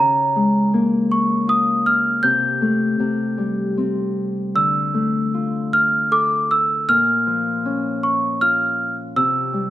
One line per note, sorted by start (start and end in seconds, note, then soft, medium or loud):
0.00 2.28 C#3 medium
0.00 1.02 D#5 soft
0.00 0.69 A#5 medium
0.36 2.28 G#3 medium
0.74 2.68 A#3 medium
1.12 1.50 C#6 medium
1.47 4.00 F4 soft
1.47 1.87 D#6 medium
1.86 2.21 F6 medium
2.23 2.98 C3 medium
2.23 3.73 G6 medium
2.62 4.94 A3 medium
3.00 4.60 C3 medium
3.38 4.60 G3 soft
3.77 6.77 C4 soft
4.55 6.94 D3 medium
4.55 5.76 E6 medium
4.94 6.95 A3 soft
5.34 7.86 F4 soft
5.73 6.13 F6 medium
6.11 6.95 A4 medium
6.11 6.52 D6 medium
6.51 6.90 E6 medium
6.89 9.21 A#2 medium
6.89 8.07 F6 medium
7.27 9.21 F3 medium
7.65 9.22 C#4 medium
8.03 8.39 C#6 medium
8.41 9.70 F4 medium
8.41 8.94 F6 medium
9.16 9.70 C3 medium
9.16 9.70 E6 medium
9.53 9.70 G3 soft